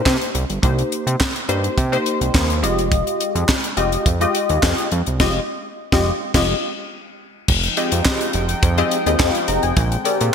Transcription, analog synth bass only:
0.06 0.17 C3 loud
0.35 0.45 C2 loud
0.50 0.59 G1 medium
0.63 0.83 C2 loud
1.07 1.16 C3 loud
1.49 1.69 G2 medium
1.78 1.97 C3 loud
2.21 2.30 C2 medium
2.35 2.64 D#2 loud
2.63 3.03 F1 loud
3.35 3.45 F2 loud
3.77 3.97 F1 loud
4.06 4.26 F2 medium
4.50 4.59 D#2 loud
4.63 4.74 F2 loud
4.92 5.02 F2 loud
5.07 5.19 C2 medium
5.20 5.40 F1 loud
5.92 6.11 F1 loud
6.34 6.54 F1 loud
7.49 7.69 F1 loud
7.92 8.02 F2 loud
8.34 8.54 F1 loud
8.63 8.83 F2 loud
9.06 9.16 D#2 medium
9.20 9.30 F2 loud
9.48 9.59 F1 loud
9.63 9.73 F1 loud
9.77 9.97 A#1 loud
10.21 10.30 A#2 loud

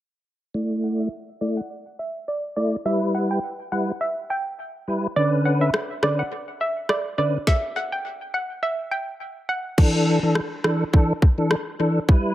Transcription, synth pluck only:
0.55 0.69 D5 medium
0.84 0.98 F#5 medium
1.00 1.11 E5 medium
1.41 1.56 D5 medium
1.57 1.69 F#5 medium
1.99 2.14 E5 medium
2.28 2.42 D5 medium
2.56 2.71 D5 medium
2.86 3.00 E5 loud
3.15 3.29 F#5 medium
3.31 3.57 G5 medium
3.72 3.98 F#5 medium
4.01 4.15 E5 medium
4.30 4.45 G5 medium
5.16 5.31 D5 loud
5.45 5.60 F#5 medium
5.61 5.73 E5 medium
6.03 6.18 D5 medium
6.19 6.30 F#5 medium
6.61 6.75 E5 medium
6.90 7.04 D5 medium
7.18 7.33 D5 medium
7.47 7.62 E5 loud
7.76 7.91 F#5 medium
7.92 8.18 G5 medium
8.34 8.60 F#5 medium
8.63 8.77 E5 medium
8.91 9.06 G5 medium
9.49 9.63 F#5 medium

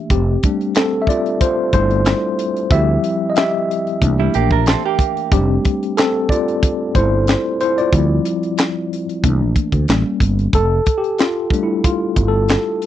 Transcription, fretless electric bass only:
0.10 0.36 F1 loud
1.73 2.12 G1 medium
2.71 2.96 D2 medium
4.02 4.27 C2 medium
4.35 4.74 A#1 medium
5.32 5.57 F1 loud
6.95 7.34 G1 medium
7.93 8.18 D2 loud
9.24 9.42 C2 medium
9.42 9.53 A#1 medium
9.73 9.85 D2 medium
9.89 10.02 A1 medium
10.21 10.46 G1 medium
10.54 10.79 F1 loud
12.17 12.56 G1 medium

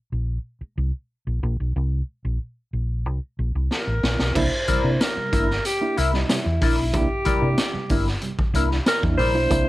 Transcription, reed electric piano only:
4.36 4.50 A#3 loud
4.36 4.50 D4 medium
4.36 4.50 E4 loud
4.68 4.82 C3 medium
4.68 4.82 G3 medium
4.84 4.98 A#3 medium
4.84 4.98 D4 medium
4.84 4.99 E4 medium
5.17 5.31 C3 medium
5.17 5.31 G3 medium
5.33 5.47 A#3 medium
5.33 5.47 D4 medium
5.33 5.47 E4 medium
5.81 5.95 A#3 medium
5.81 5.95 D4 medium
5.81 5.96 E4 medium
6.13 6.28 C3 medium
6.13 6.28 G3 medium
6.29 6.44 C3 medium
6.29 6.43 G3 medium
6.61 6.76 A#3 medium
6.61 6.76 D4 medium
6.61 6.76 E4 medium
6.77 6.84 D4 soft
6.77 6.84 E4 soft
6.93 7.08 A#3 loud
6.93 7.08 D4 medium
6.93 7.08 E4 loud
7.26 7.40 C3 medium
7.26 7.40 G3 medium
7.41 7.56 A#3 medium
7.41 7.56 D4 medium
7.41 7.56 E4 medium
7.74 7.88 C3 medium
7.74 7.88 G3 medium
7.90 8.04 A#3 medium
7.90 8.05 D4 medium
7.90 8.05 E4 medium
8.23 8.37 C3 medium
8.23 8.37 G3 medium
8.54 8.69 A#3 medium
8.54 8.69 D4 medium
8.54 8.69 E4 medium
8.71 8.77 D4 medium
8.71 8.77 E4 medium
9.02 9.17 A#3 medium
9.02 9.17 D4 medium
9.02 9.17 E4 medium
9.18 9.33 C3 medium
9.18 9.33 G3 medium
9.35 9.49 A#3 medium
9.35 9.49 D4 medium
9.35 9.49 E4 medium
9.50 9.65 A#3 medium
9.50 9.65 D4 medium
9.50 9.65 E4 loud

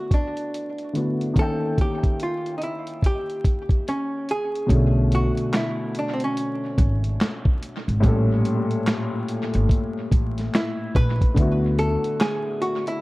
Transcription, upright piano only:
0.00 0.90 D3 medium
0.00 0.91 A3 medium
0.00 0.92 B3 medium
0.00 0.93 E4 medium
0.00 0.94 F#4 medium
0.93 1.36 D3 soft
0.93 1.36 A3 soft
0.93 1.37 B3 soft
0.93 1.37 E4 soft
0.93 1.37 F#4 soft
1.34 4.64 D#3 medium
1.34 4.65 A#3 medium
1.38 4.66 C#4 medium
1.38 4.67 E5 soft
1.38 4.68 G5 medium
4.66 7.97 B2 medium
4.66 7.98 F#3 medium
4.66 7.99 C#4 medium
4.72 8.00 D3 medium
4.72 8.01 A3 medium
8.00 11.31 A2 medium
8.00 11.33 A#2 medium
8.00 11.32 G3 medium
8.06 11.34 C#4 medium
8.06 11.35 A4 loud
11.34 13.01 D3 medium
11.34 13.01 A3 medium
11.34 13.01 B3 medium
11.40 13.01 E4 medium
11.40 13.01 F#4 medium

